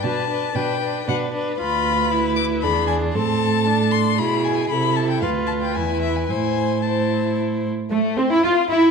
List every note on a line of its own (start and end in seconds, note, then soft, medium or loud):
0.03 0.47 B2 medium
0.03 0.29 D4 medium
0.03 0.29 B4 soft
0.03 0.57 A5 medium
0.29 0.54 D4 soft
0.29 0.54 B4 soft
0.54 0.99 B2 medium
0.54 0.81 D4 soft
0.54 0.79 B4 soft
0.54 1.08 G5 medium
0.79 1.06 D4 soft
0.79 1.06 B4 soft
1.07 1.51 B2 medium
1.07 1.32 D4 medium
1.07 1.33 B4 soft
1.07 1.16 F#5 medium
1.33 1.59 D4 soft
1.33 1.58 B4 soft
1.58 2.65 D2 medium
1.58 2.13 F4 medium
1.58 2.65 B4 medium
1.58 2.32 B5 medium
2.12 2.64 E4 soft
2.36 2.44 D6 medium
2.62 3.17 E2 medium
2.62 3.17 D4 medium
2.62 3.16 G#4 medium
2.62 2.86 B5 medium
2.87 2.95 G#5 medium
3.14 4.21 A2 medium
3.14 3.69 C4 medium
3.14 4.17 A4 medium
3.14 3.93 A5 medium
3.67 4.20 D4 soft
3.91 4.19 C6 medium
4.18 4.71 B2 medium
4.18 4.70 E4 medium
4.18 4.73 G#4 medium
4.18 4.45 B5 medium
4.44 4.69 G#5 medium
4.70 5.25 C3 medium
4.70 5.24 E4 medium
4.70 5.24 A4 medium
4.70 4.97 B5 medium
4.96 5.09 A5 medium
5.10 5.21 G5 medium
5.21 5.79 D2 soft
5.21 5.78 F4 soft
5.21 5.76 B4 soft
5.21 5.29 F5 medium
5.47 5.53 A5 medium
5.62 5.76 G5 soft
5.75 6.31 E2 medium
5.75 6.29 E4 soft
5.75 6.32 B4 soft
5.75 6.02 G#5 medium
6.02 6.17 E5 medium
6.16 6.27 G#5 soft
6.27 7.70 A2 soft
6.27 6.82 E4 soft
6.27 6.83 C5 soft
6.27 6.84 G#5 medium
6.82 7.69 E4 soft
6.82 7.69 C5 soft
6.82 7.36 A5 soft
7.90 8.18 A3 medium
7.90 7.99 A3 medium
7.90 8.19 A3 medium
7.90 8.00 A3 medium
8.17 8.30 C4 medium
8.17 8.31 C4 medium
8.17 8.34 C4 medium
8.17 8.23 C4 medium
8.29 8.45 E4 medium
8.29 8.43 E4 medium
8.29 8.44 E4 medium
8.29 8.45 E4 medium
8.43 8.69 F4 medium
8.43 8.70 F4 medium
8.43 8.52 F4 medium
8.43 8.53 F4 medium
8.69 8.91 E4 medium